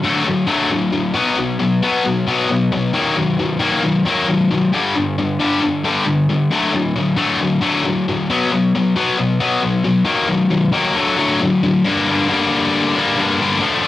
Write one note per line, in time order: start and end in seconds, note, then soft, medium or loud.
0.04 0.23 D3 medium
0.04 0.25 F#3 medium
0.04 0.26 A3 loud
0.25 0.46 D3 medium
0.25 0.47 F#3 medium
0.47 0.69 D3 medium
0.47 0.70 F#3 medium
0.47 0.70 A3 medium
0.71 0.91 D3 medium
0.71 0.91 F#3 medium
0.92 1.13 D3 medium
0.92 1.14 F#3 medium
1.14 1.36 B2 medium
1.14 1.37 F#3 medium
1.14 1.37 B3 medium
1.38 1.58 B2 medium
1.38 1.58 F#3 medium
1.59 1.80 B2 medium
1.59 1.80 F#3 medium
1.82 2.03 B2 medium
1.82 2.03 F#3 medium
1.82 2.04 B3 loud
2.04 2.25 B2 medium
2.04 2.25 F#3 medium
2.27 2.48 B2 medium
2.27 2.48 F#3 medium
2.27 2.49 B3 loud
2.49 2.70 B2 medium
2.49 2.70 F#3 medium
2.72 2.92 B2 medium
2.72 2.93 F#3 medium
2.94 3.15 D#3 medium
2.94 3.16 F#3 medium
2.94 3.16 A#3 medium
3.17 3.37 D#3 medium
3.17 3.37 F#3 medium
3.39 3.58 D#3 medium
3.39 3.59 F#3 medium
3.59 3.82 D#3 medium
3.59 3.82 F#3 loud
3.59 3.82 A#3 loud
3.83 4.03 D#3 medium
3.83 4.04 F#3 medium
4.06 4.27 D#3 medium
4.06 4.27 F#3 medium
4.06 4.28 A#3 loud
4.28 4.49 D#3 medium
4.28 4.49 F#3 medium
4.51 4.71 D#3 medium
4.51 4.71 F#3 medium
4.73 4.94 G2 medium
4.73 4.94 D3 medium
4.73 4.95 G3 medium
4.95 5.15 G2 medium
4.95 5.16 D3 medium
5.18 5.38 G2 medium
5.18 5.38 D3 medium
5.40 5.60 G2 medium
5.40 5.61 D3 medium
5.40 5.61 G3 loud
5.62 5.82 G2 medium
5.62 5.82 D3 medium
5.84 6.04 G2 medium
5.84 6.04 D3 medium
5.84 6.06 G3 medium
6.05 6.26 G2 medium
6.05 6.26 D3 medium
6.29 6.49 G2 medium
6.29 6.50 D3 medium
6.51 6.71 D3 medium
6.51 6.71 F#3 medium
6.51 6.73 A3 medium
6.72 6.93 D3 medium
6.72 6.93 F#3 medium
6.96 7.15 D3 medium
6.96 7.16 F#3 medium
7.16 7.38 D3 medium
7.16 7.39 F#3 loud
7.16 7.39 A3 loud
7.40 7.60 D3 medium
7.40 7.61 F#3 medium
7.61 7.83 D3 medium
7.61 7.84 F#3 loud
7.61 7.84 A3 loud
7.85 8.05 D3 medium
7.85 8.06 F#3 medium
8.08 8.28 D3 medium
8.08 8.28 F#3 medium
8.30 8.51 B2 medium
8.30 8.51 F#3 medium
8.30 8.51 B3 medium
8.52 8.72 B2 medium
8.52 8.72 F#3 medium
8.75 8.95 B2 medium
8.75 8.95 F#3 medium
8.96 9.17 B2 loud
8.96 9.17 F#3 loud
8.96 9.18 B3 loud
9.18 9.39 B2 medium
9.18 9.39 F#3 medium
9.40 9.61 B2 medium
9.40 9.61 F#3 medium
9.40 9.62 B3 loud
9.62 9.82 B2 medium
9.62 9.82 F#3 medium
9.84 10.04 B2 medium
9.84 10.04 F#3 medium
10.05 10.26 D#3 medium
10.05 10.27 F#3 medium
10.05 10.28 A#3 loud
10.28 10.49 D#3 medium
10.28 10.49 F#3 medium
10.51 10.71 D#3 medium
10.51 10.71 F#3 medium
10.73 10.94 D#3 medium
10.73 10.95 F#3 medium
10.73 10.95 A#3 loud
10.96 11.16 D3 medium
10.96 11.17 F#3 medium
10.96 11.17 A3 medium
11.17 11.39 D3 medium
11.17 11.39 F#3 medium
11.17 11.39 A3 loud
11.42 11.61 D3 medium
11.42 11.61 F#3 medium
11.63 11.83 D3 medium
11.63 11.83 F#3 medium
11.84 12.29 G2 medium
11.84 12.28 D3 medium
11.84 12.10 G3 medium
11.84 12.08 A#3 loud
11.84 12.08 D4 loud
12.09 12.29 G3 medium
12.09 12.31 A#3 medium
12.09 12.32 D4 medium
12.29 13.18 D3 medium
12.29 12.97 G3 medium
12.29 12.95 A#3 medium
12.29 12.95 D4 medium
12.95 13.19 G3 medium
12.95 13.20 A#3 medium
12.95 13.21 D4 medium
13.18 13.61 G2 medium
13.18 13.60 D3 medium
13.18 13.42 G3 medium
13.18 13.41 A#3 loud
13.18 13.40 D4 medium
13.41 13.62 G3 medium
13.41 13.62 A#3 medium
13.41 13.64 D4 medium
13.62 13.88 D3 medium
13.62 13.86 F3 medium
13.62 13.83 A3 medium
13.62 13.83 D4 medium
13.83 13.88 D4 medium